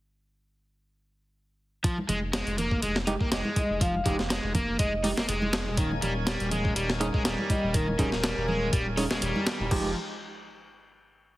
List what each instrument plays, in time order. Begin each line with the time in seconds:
1.84 overdriven electric guitar F3, kick, closed hi-hat
1.98 high conga
2.09 sub bass F1, overdriven electric guitar G#3, closed hi-hat, low conga
2.33 overdriven electric guitar G#3, snare, closed hi-hat
2.46 sub bass F1, closed hi-hat
2.58 overdriven electric guitar A#3, closed hi-hat, low conga
2.71 kick
2.82 sub bass F1, overdriven electric guitar G#3, closed hi-hat
2.96 snare
3.07 tine electric piano G#3 D#4 G4, overdriven electric guitar D#4, closed hi-hat, high conga
3.21 sub bass F1, overdriven electric guitar A#3, kick
3.32 sub bass F1, overdriven electric guitar G#3, snare, closed hi-hat
3.45 high conga
3.56 vibraphone D#5, kick, closed hi-hat, high conga
3.70 sub bass F1
3.81 overdriven electric guitar F3, vibraphone F5, kick, closed hi-hat
3.94 vibraphone F5, high conga
4.05 sub bass F1, overdriven electric guitar G#3, tine electric piano G#3 D#4 G4, kick, closed hi-hat, low conga
4.19 snare
4.30 overdriven electric guitar G#3, snare, closed hi-hat
4.43 sub bass F1
4.55 overdriven electric guitar A#3, kick, closed hi-hat, low conga
4.79 sub bass F1, overdriven electric guitar G#3, vibraphone D#5, kick, closed hi-hat
4.92 vibraphone D#5
5.04 tine electric piano G#3 D#4 G4, overdriven electric guitar D#4, open hi-hat, high conga
5.17 sub bass F1, overdriven electric guitar A#3, snare
5.28 sub bass F1, overdriven electric guitar G#3, closed hi-hat
5.42 high conga
5.53 snare, closed hi-hat
5.66 sub bass D#1, high conga
5.77 overdriven electric guitar D#3, tonewheel organ D#3 A#3 C#4 G#5, kick, closed hi-hat
5.92 high conga
6.01 sub bass D#1, overdriven electric guitar G3, closed hi-hat, low conga
6.27 overdriven electric guitar G3, snare, closed hi-hat
6.40 sub bass D#1, closed hi-hat
6.51 overdriven electric guitar G#3, closed hi-hat, low conga
6.65 kick
6.76 sub bass D#1, overdriven electric guitar G3, closed hi-hat
6.90 snare
7.00 overdriven electric guitar C#4, tine electric piano C#4 D#4 G#4, closed hi-hat, high conga
7.14 sub bass D#1, overdriven electric guitar G#3, kick
7.25 sub bass D#1, overdriven electric guitar G3, snare, closed hi-hat
7.39 high conga
7.49 vibraphone D#5, kick, closed hi-hat, high conga
7.63 sub bass D#1
7.74 overdriven electric guitar D#3, vibraphone A#4, kick, closed hi-hat
7.88 vibraphone A#4, high conga
7.98 sub bass D#1, overdriven electric guitar G3, tine electric piano C#4 D#4 G#4, vibraphone A#4, kick, closed hi-hat, low conga
8.12 snare
8.24 overdriven electric guitar G3, snare, closed hi-hat
8.37 sub bass D#1
8.48 overdriven electric guitar G#3, low conga
8.73 sub bass D#1, overdriven electric guitar G3, kick, closed hi-hat
8.97 tine electric piano C#4 D#4 G#4, overdriven electric guitar C#4, open hi-hat, high conga
9.11 sub bass D#1, overdriven electric guitar G#3, snare
9.22 sub bass D#1, overdriven electric guitar G3, closed hi-hat
9.36 high conga
9.47 snare, closed hi-hat
9.60 sub bass D#1, high conga
9.71 sub bass F1, tonewheel organ F3 D#4 G4 G#4, overdriven electric guitar F3, tine electric piano G#3 D#4 G4, kick, crash